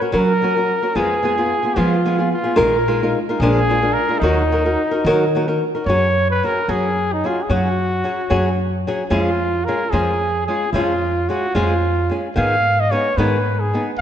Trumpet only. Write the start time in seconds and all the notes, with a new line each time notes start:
0.16 A#4
0.96 G#4
1.79 F4
2.33 F4
2.58 A#4
3.40 G#4
3.94 A#4
4.19 D#4
5.86 C#5
6.30 B4
6.45 A#4
6.71 G#4
7.13 D#4
7.27 F4
7.43 G#4
7.52 F#4
9.10 F4
9.65 A#4
9.91 G#4
10.47 G#4
10.73 F4
11.29 F#4
11.55 F4
12.37 F5
12.80 D#5
12.91 C#5
13.18 B4
13.60 G#4